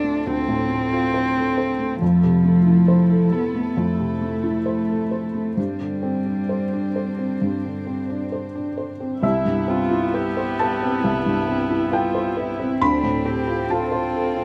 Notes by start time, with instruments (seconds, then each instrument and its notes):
Already playing: felt piano D2 A2 A3 F4 A4 C5, string section C4 F4 A4, cello D4
0.04 felt piano A3
0.26 felt piano D2, cello C4
0.48 felt piano A2
0.70 felt piano A3
0.92 felt piano F4
1.14 felt piano C5
1.37 felt piano A4
1.58 felt piano C5
1.79 felt piano A3
2.01 felt piano F2, cello F3, string section A3 E4 A4
2.24 felt piano C3
2.45 felt piano A3
2.67 felt piano E4
2.88 felt piano C5
3.10 felt piano A4
3.32 cello B3, felt piano A4
3.55 felt piano A3
3.77 felt piano F2, cello A3
3.99 felt piano C3
4.21 felt piano A3
4.44 felt piano E4
4.66 felt piano C5
4.89 felt piano A4
5.11 felt piano C5
5.34 felt piano A3
5.57 felt piano G2, cello G3, string section C4 D4 C5
5.80 felt piano D3
6.03 felt piano C4
6.26 felt piano D4
6.49 felt piano C5
6.73 felt piano D4
6.96 felt piano C5
7.19 felt piano C4
7.42 felt piano G2
7.65 felt piano D3
7.87 felt piano C4
8.10 felt piano D4
8.32 felt piano C5
8.55 felt piano D4
8.78 felt piano C5
9.00 felt piano C4
9.22 felt piano C2 E5, string section G3 G4 E5, viola B3, cello E4
9.45 felt piano G2
9.68 felt piano C4, cello F4
9.91 felt piano E4
10.14 cello G4, felt piano B4
10.37 felt piano C5
10.59 felt piano B4 A5
10.83 felt piano C4
11.04 felt piano C2, cello E4
11.26 felt piano G2
11.48 felt piano C4
11.70 felt piano E4
11.91 cello F4, felt piano B4 G5
12.15 felt piano C5
12.37 cello E4, felt piano B4
12.60 felt piano C4
12.80 felt piano D2 B5, string section F3 C4 A4, viola C4, cello D4
13.03 felt piano A2
13.25 felt piano C4, cello G4
13.47 felt piano F4
13.70 cello F4, felt piano A4 A5
13.92 felt piano C5
14.14 felt piano A4
14.37 felt piano C4